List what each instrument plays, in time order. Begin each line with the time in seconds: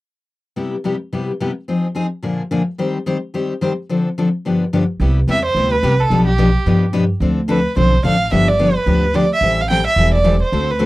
0.56 steel-string acoustic guitar C3 G3 B3 E4 G4
0.84 steel-string acoustic guitar C3 G3 B3 E4 G4
1.12 steel-string acoustic guitar C3 G3 B3 E4 G4
1.40 steel-string acoustic guitar C3 G3 B3 E4 G4
1.68 steel-string acoustic guitar F3 C4 D#4 G#4
1.95 steel-string acoustic guitar F3 C4 D#4 G#4
2.23 steel-string acoustic guitar A#2 D3 F3 A#3 D4 G#4
2.51 steel-string acoustic guitar A#2 D3 F3 A#3 D4 G#4
2.78 steel-string acoustic guitar D#3 G3 C4 G4 C5
3.06 steel-string acoustic guitar D#3 G3 C4 G4 C5
3.34 steel-string acoustic guitar D#3 G3 C4 G4 C5
3.61 steel-string acoustic guitar D#3 G3 C4 G4 C5
3.89 steel-string acoustic guitar D3 F3 C4 D4 A4
4.18 steel-string acoustic guitar D3 F3 C4 D4 A4
4.45 steel-string acoustic guitar G2 D3 F3 B3 D4 G4
4.73 steel-string acoustic guitar G2 D3 F3 B3 D4 G4
5.00 upright bass C2, steel-string acoustic guitar C3 G3 B3 E4 G4
5.27 upright bass E2, steel-string acoustic guitar C3 G3 B3 E4 G4, violin E5
5.45 violin C5
5.55 upright bass D2, steel-string acoustic guitar C3 G3 B3 E4 G4
5.72 violin B4
5.83 upright bass C2, steel-string acoustic guitar C3 G3 B3 E4 G4
6.00 violin A4
6.10 upright bass B1, steel-string acoustic guitar B2 F3 B3 D4 G4 B4
6.27 violin G4
6.38 steel-string acoustic guitar B2 F3 B3 D4 G4 B4
6.66 upright bass G2, steel-string acoustic guitar B2 F3 B3 D4 G4 B4
6.93 steel-string acoustic guitar B2 F3 B3 D4 G4 B4
7.20 upright bass D2, steel-string acoustic guitar D3 F3 C4 D4 A4
7.48 steel-string acoustic guitar D3 F3 C4 D4 A4, violin B4
7.76 upright bass B1, steel-string acoustic guitar D3 F3 C4 D4 A4, violin C5
8.04 upright bass A1, steel-string acoustic guitar D3 F3 C4 D4 A4, violin F5
8.31 upright bass G1, steel-string acoustic guitar D3 F3 B3 D4 G4, violin E5
8.48 violin D5
8.59 steel-string acoustic guitar D3 F3 B3 D4 G4
8.76 violin B4
8.86 upright bass D2, steel-string acoustic guitar D3 F3 B3 D4 G4
9.14 steel-string acoustic guitar D3 F3 B3 D4 G4, violin D5
9.33 violin E5
9.41 upright bass A1, steel-string acoustic guitar E3 G3 C4 E4 A4
9.61 violin F5
9.70 steel-string acoustic guitar E3 G3 C4 E4 A4, violin G5
9.87 violin E5
9.96 upright bass E1, steel-string acoustic guitar E3 G3 C4 E4 A4
10.14 violin D5
10.24 steel-string acoustic guitar E3 G3 C4 E4 A4
10.42 violin C5
10.52 upright bass D2, steel-string acoustic guitar D3 A3 C4 F#4 A4
10.71 violin B4
10.79 steel-string acoustic guitar D3 A3 C4 F#4 A4